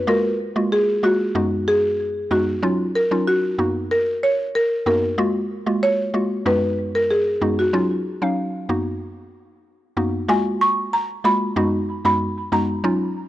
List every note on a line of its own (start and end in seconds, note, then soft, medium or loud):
0.07 0.31 G#3 loud
0.07 0.31 A#3 medium
0.07 0.31 F4 medium
0.07 0.31 F#4 loud
0.07 0.68 A#4 loud
0.56 0.99 G#3 medium
0.56 1.00 A#3 medium
0.56 1.00 F4 medium
0.56 1.00 F#4 medium
0.72 1.05 G#4 medium
1.03 1.33 G#3 medium
1.03 1.33 A#3 medium
1.03 1.33 F4 medium
1.03 1.33 F#4 medium
1.03 1.64 F#4 medium
1.35 2.23 F#2 medium
1.35 2.23 G#3 medium
1.35 2.24 B3 medium
1.35 2.24 D#4 medium
1.35 2.24 F#4 loud
1.68 2.33 G#4 medium
2.31 2.54 F#2 medium
2.31 2.54 G#3 medium
2.31 2.54 B3 medium
2.31 2.54 D#4 medium
2.31 2.54 F#4 medium
2.31 2.97 F#4 medium
2.63 2.86 F#3 loud
2.63 2.86 C#4 medium
2.63 2.86 D#4 medium
2.63 2.86 F4 loud
2.95 3.10 A#4 medium
3.11 3.55 F#3 medium
3.11 3.55 C#4 medium
3.11 3.55 D#4 medium
3.11 3.55 F4 medium
3.27 3.93 F#4 medium
3.58 3.88 F#2 medium
3.58 3.88 A#3 medium
3.58 3.88 B3 medium
3.58 3.88 D#4 medium
3.58 3.88 F#4 medium
3.91 4.24 A#4 medium
4.23 4.56 C#5 medium
4.55 4.86 A#4 medium
4.86 5.10 F#2 medium
4.86 5.10 A#3 medium
4.86 5.10 B3 medium
4.86 5.10 D#4 medium
4.86 5.10 F#4 medium
4.86 5.78 A#4 loud
5.18 5.41 G#3 loud
5.18 5.42 A#3 medium
5.18 5.42 F4 medium
5.18 5.42 F#4 loud
5.66 6.10 G#3 medium
5.66 6.10 A#3 medium
5.66 6.10 F4 medium
5.66 6.10 F#4 medium
5.83 6.48 C#5 medium
6.14 6.43 G#3 medium
6.14 6.43 A#3 medium
6.14 6.43 F4 medium
6.14 6.44 F#4 medium
6.46 7.34 F#2 medium
6.46 7.34 G#3 medium
6.46 7.34 B3 medium
6.46 7.34 D#4 medium
6.46 7.34 F#4 loud
6.46 6.96 B4 medium
6.95 7.10 A#4 medium
7.11 7.60 G#4 medium
7.41 7.65 F#2 medium
7.41 7.65 G#3 medium
7.41 7.65 B3 medium
7.41 7.65 D#4 medium
7.41 7.65 F#4 medium
7.59 8.50 F#4 medium
7.73 7.97 F#3 medium
7.73 7.97 C#4 medium
7.73 7.97 D#4 medium
7.73 7.97 F4 loud
8.22 8.65 F#3 medium
8.22 8.65 C#4 medium
8.22 8.66 D#4 medium
8.22 8.66 F5 medium
8.69 8.99 F#2 medium
8.69 8.99 A#3 medium
8.69 8.99 B3 medium
8.69 8.99 D#4 medium
8.69 8.99 F#4 medium
9.97 10.20 F#2 medium
9.97 10.20 A#3 medium
9.97 10.20 B3 medium
9.97 10.20 D#4 medium
9.97 10.20 F#4 medium
10.28 10.88 G#3 loud
10.28 10.88 A#3 medium
10.28 10.88 F4 medium
10.28 10.88 F#4 loud
10.28 10.62 G#5 medium
10.61 10.94 C#6 loud
10.93 11.26 A#5 loud
11.24 11.48 G#3 medium
11.24 11.48 A#3 medium
11.24 11.48 F4 medium
11.24 11.48 F#4 medium
11.24 12.04 B5 loud
11.56 11.80 F#2 loud
11.56 11.80 G#3 medium
11.56 11.80 B3 medium
11.56 11.80 D#4 medium
11.56 11.80 F#4 loud
12.05 12.28 F#2 medium
12.05 12.28 G#3 medium
12.05 12.28 B3 medium
12.05 12.28 D#4 medium
12.05 12.28 F#4 medium
12.05 12.54 B5 loud
12.52 12.75 F#2 medium
12.52 12.76 G#3 medium
12.52 12.76 B3 medium
12.52 12.76 D#4 medium
12.52 12.76 F#4 medium
12.52 13.12 A#5 medium
12.84 13.07 F#3 loud
12.84 13.07 C#4 medium
12.84 13.08 D#4 medium
12.84 13.08 F4 loud